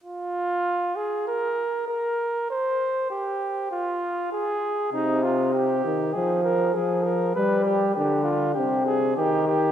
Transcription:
<<
  \new Staff \with { instrumentName = "Flugelhorn" } { \time 4/4 \key c \phrygian \tempo 4 = 99 f'4. aes'8 bes'4 bes'4 | c''4 g'4 f'4 aes'4 | ees'8 f'8 g'4 aes'8 bes'8 aes'8 bes'8 | b'8 g'8 g'8 f'8 g'8 aes'8 g'8 g'8 | }
  \new Staff \with { instrumentName = "Trombone" } { \clef bass \time 4/4 \key c \phrygian r1 | r1 | c4. ees8 f4 f4 | g4 d4 c4 ees4 | }
>>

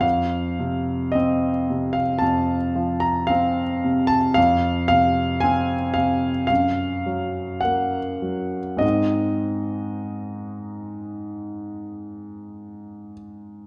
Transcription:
<<
  \new Staff \with { instrumentName = "Grand piano" } { \time 4/4 \key f \phrygian \tempo 4 = 54 f''4 ees''8. f''16 a''8. bes''16 f''8. a''16 | \key aes \mixolydian f''8 f''8 aes''8 f''8 f''4 ges''4 | ees''2.~ ees''8 r8 | }
  \new Staff \with { instrumentName = "Grand piano" } { \clef bass \time 4/4 \key f \phrygian f,8 c8 c'8 c8 f,8 f8 c'8 c8 | \key aes \mixolydian f,8 c8 c'8 c8 ges,8 ges8 bes8 ges8 | <aes, aes c' ees'>1 | }
>>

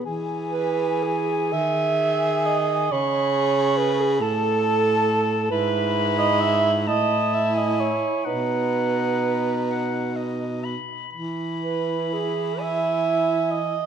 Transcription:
<<
  \new Staff \with { instrumentName = "Clarinet" } { \time 6/8 \key e \major \tempo 4. = 43 gis''2. | b''4. a''4. | b''4. a''8. gis''8. | fis''4. fis''8 dis''8 b''8 |
b''4. gis''4. | }
  \new Staff \with { instrumentName = "Alto saxophone" } { \time 6/8 \key e \major r8 b'8 gis'8 e''4 dis''8 | cis''4 b'16 gis'16 a'4. | b'8. dis''16 e''8 dis''8 e''16 dis''16 cis''8 | b'2~ b'8 r8 |
r8 b'8 gis'8 e''4 dis''8 | }
  \new Staff \with { instrumentName = "Tenor saxophone" } { \time 6/8 \key e \major gis'4. gis'4. | gis'4. a'4. | e'4. e'4. | dis'2~ dis'8 r8 |
e'2. | }
  \new Staff \with { instrumentName = "Baritone saxophone" } { \clef bass \time 6/8 \key e \major e4. dis4. | cis4. a,4. | gis,4. a,4. | b,2~ b,8 r8 |
e2. | }
>>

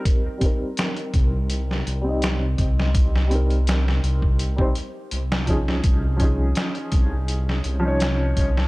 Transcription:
<<
  \new Staff \with { instrumentName = "Felt piano" } { \time 4/4 \key c \phrygian \tempo 4 = 83 <g c' ees' bes'>8 <g c' ees' bes'>2~ <g c' ees' bes'>16 <g c' ees' ees''>4~ <g c' ees' ees''>16~ | <g c' ees' ees''>8 <g c' ees' bes'>4.~ <g c' ees' bes'>16 <g c' ees' c''>16 r4 <f des' ees' aes'>8~ | <f des' ees' aes'>8 <f des' ees' aes'>2~ <f des' ees' aes'>16 <f des' ees' des''>4~ <f des' ees' des''>16 | }
  \new Staff \with { instrumentName = "Detuned saw bass" } { \clef bass \time 4/4 \key c \phrygian r4. c,4 c,4 c,8~ | c,4. c,4 r8 c,4 | c,4 r8 c,4 c,4 c,8 | }
  \new DrumStaff \with { instrumentName = "Drums" } \drummode { \time 4/4 <hh bd>8 <hh bd>8 <hh sn>16 hh16 <hh bd>8 hh16 sn16 hh8 <hh sn>8 <hh bd>16 sn16 | <hh bd>16 sn16 hh16 hh16 <hh sn>16 sn16 hh16 bd16 hh16 bd16 hh8 hh16 sn16 <hh bd>16 sn16 | <hh bd>8 <hh bd>8 <hh sn>16 hh16 <hh bd>8 hh16 sn16 hh8 <hh sn>8 <hh bd>16 sn16 | }
>>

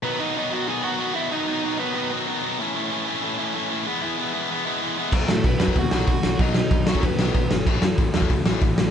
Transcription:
<<
  \new Staff \with { instrumentName = "Lead electric guitar" } { \time 4/4 \key b \mixolydian \tempo 4 = 188 <b b'>8 <dis' dis''>8 <dis' dis''>8 <fis' fis''>8 <gis' gis''>8 <fis' fis''>4 <e' e''>8 | <dis' dis''>4. <b b'>4 r4. | r1 | r1 |
r8 <a a'>8 <b b'>4 <fis' fis''>8 <fis' fis''>4. | <dis' dis''>4. <cis' cis''>8 <b b'>4. r8 | r1 | }
  \new Staff \with { instrumentName = "Distorted electric guitar" } { \clef bass \time 4/4 \key b \mixolydian <b, dis fis b fis'>8 <b, dis fis b fis'>8 <b, dis fis b fis'>8 <b, dis fis b fis'>8 <b, dis fis b fis'>8 <b, dis fis b fis'>8 <b, dis fis b fis'>8 <b, dis fis b fis'>8 | <b, dis fis b fis'>8 <b, dis fis b fis'>8 <b, dis fis b fis'>8 <b, dis fis b fis'>8 <b, dis fis b fis'>8 <b, dis fis b fis'>8 <b, dis fis b fis'>8 <b, dis fis b fis'>8 | <a, e a cis' e'>8 <a, e a cis' e'>8 <a, e a cis' e'>8 <a, e a cis' e'>8 <a, e a cis' e'>8 <a, e a cis' e'>8 <a, e a cis' e'>8 <a, e a cis' e'>8 | <e gis b e'>8 <e gis b e'>8 <e gis b e'>8 <e gis b e'>8 <e gis b e'>8 <e gis b e'>8 <e gis b e'>8 <e gis b e'>8 |
r1 | r1 | r1 | }
  \new Staff \with { instrumentName = "Distorted electric guitar" } { \clef bass \time 4/4 \key b \mixolydian <b, dis fis b dis'>8 <b, dis fis b dis'>8 <b, dis fis b dis'>8 <b, dis fis b dis'>8 <b, dis fis b dis'>8 <b, dis fis b dis'>8 <b, dis fis b dis'>8 <b, dis fis b dis'>8 | <b, dis fis b dis'>8 <b, dis fis b dis'>8 <b, dis fis b dis'>8 <b, dis fis b dis'>8 <b, dis fis b dis'>8 <b, dis fis b dis'>8 <b, dis fis b dis'>8 <b, dis fis b dis'>8 | <a, e a cis' e'>8 <a, e a cis' e'>8 <a, e a cis' e'>8 <a, e a cis' e'>8 <a, e a cis' e'>8 <a, e a cis' e'>8 <a, e a cis' e'>8 <a, e a cis' e'>8 | <e gis b e'>8 <e gis b e'>8 <e gis b e'>8 <e gis b e'>8 <e gis b e'>8 <e gis b e'>8 <e gis b e'>8 <e gis b e'>8 |
<b, dis fis>8 <b, dis>8 <b, dis>8 <b, dis fis>8 <b, dis>8 <b, dis fis>8 <b, dis>8 <b, dis>8 | <b, dis fis>8 <b, dis>8 <b, dis>8 <b, dis fis>8 <b, dis>8 <b, dis fis>8 <b, dis>8 <b, dis>8 | <a, e a>8 <a, e>8 <a, e>8 <a, e a>8 <a, e>8 <a, e a>8 <a, e>8 <a, e>8 | }
  \new Staff \with { instrumentName = "Picked electric bass" } { \clef bass \time 4/4 \key b \mixolydian r1 | r1 | r1 | r1 |
b,,8 a,8 b,,8 fis,8 dis,8 b,,8 b,,8 b,,8 | b,,4 b,,4 fis,8 b,,8 b,,8 gis,,8 | a,,8 fis,8 a,,8 e,8 cis,8 a,,8 a,,8 a,,8 | }
  \new DrumStaff \with { instrumentName = "Drums" } \drummode { \time 4/4 r4 r4 r4 r4 | r4 r4 r4 r4 | r4 r4 r4 r4 | r4 r4 r4 r4 |
<cymc bd>8 sn8 <hho bd>8 sn16 bd16 <hho bd>8 sn8 <hho bd>8 sn8 | <hho bd>8 sn8 <hho bd>8 sn16 bd16 <hho bd>8 sn8 <hho bd>8 sn8 | <cymc bd>8 sn8 <hho bd>8 sn16 bd16 <hho bd>8 sn8 <hho bd>8 sn8 | }
>>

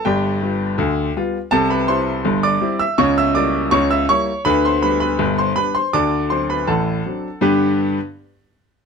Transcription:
<<
  \new Staff \with { instrumentName = "Grand piano" } { \time 2/4 \key g \major \tempo 4 = 81 <g' d'' g''>4. r8 | <a' a''>16 <b' b''>16 <c'' c'''>8. <d'' d'''>8 <e'' e'''>16 | <cis'' cis'''>16 <e'' e'''>16 <d'' d'''>8 <cis'' cis'''>16 <e'' e'''>16 <cis'' cis'''>8 | <b' b''>16 <c'' c'''>16 <b' b''>16 <b' b''>8 <c'' c'''>16 <b' b''>16 <c'' c'''>16 |
<d'' a'' d'''>8 <c'' c'''>16 <b' b''>16 <a' fis'' a''>4 | <g, d b d' g' b' b''>8 r4. | }
  \new Staff \with { instrumentName = "Grand piano" } { \clef bass \time 2/4 \key g \major <g,, g,>8 <g b f'>8 <d, d>8 <g b f'>8 | <c, c>8 <g c' e'>8 <g,, g,>8 <g c' e'>8 | <cis, cis>8 <g ais e'>8 <cis, cis>8 <g ais e'>8 | <d, d>8 <g b d'>8 <g,, g,>8 <g b d'>8 |
<d, d>8 <fis c' d'>8 <a,, a,>8 <fis c' d'>8 | r2 | }
>>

